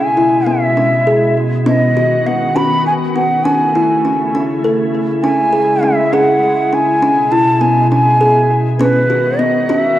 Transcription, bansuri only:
Already playing: G#5
0.47 E5
1.67 D#5
2.27 F#5
2.56 B5
2.87 G#5
3.15 F#5
3.44 G#5
5.23 G#5
5.84 E5
6.13 F#5
6.74 G#5
7.31 A5
7.61 G#5
7.91 G#5
8.79 B4
9.39 D#5
9.68 D#5
9.79 E5

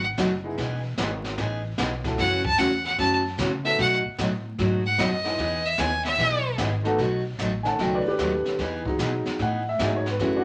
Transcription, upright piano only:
0.43 G#3 B3 D#4 E4 G#4
2.04 A3 C#4 E4 F#4 A4
3.64 A3 B3 D#4 F#4 A4
5.24 G#3 B3 D#4 E4 G#4
6.83 A3 B3 D#4 F#4 A4
7.63 D#3 A3 C#4 F#5 G#5
7.67 A5
7.80 D#5 G5
7.94 B4 D5
8.08 G4 B4
8.86 F#3 G#3 D#4
9.42 F#5
9.69 E5
9.80 F#3 G#3 D#4
9.96 C#5
10.10 B4
10.20 G#3 A3 E4
10.36 D4 F#4

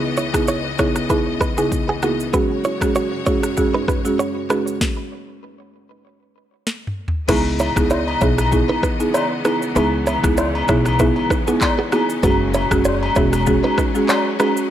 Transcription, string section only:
Already playing: C#2 C#3 E3 B3 D#5
2.33 F#2 C#3 G#3 F#4 C#5
7.29 C#3 E3 G#3 B3 D#5
9.76 C#4
12.23 F#3

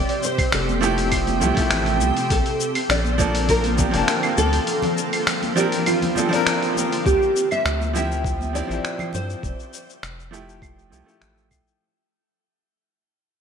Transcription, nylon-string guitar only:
Already playing: D5
0.25 C5
0.54 A4
2.32 A4
2.91 D5
3.50 A#4
4.38 A4
5.57 G4
5.87 F4
7.06 G4
7.52 E5
7.96 E5
8.55 D5
9.14 C5

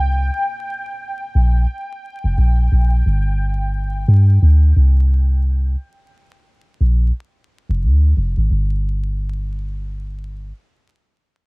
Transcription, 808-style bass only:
Already playing: C2
1.35 A#1
2.24 F1
2.38 A#1
2.72 A#1
3.06 G1
4.08 G2
4.42 D2
4.76 C2
6.81 A#1
7.70 F1
7.83 D2
8.17 F1
8.37 G#1
8.51 G1

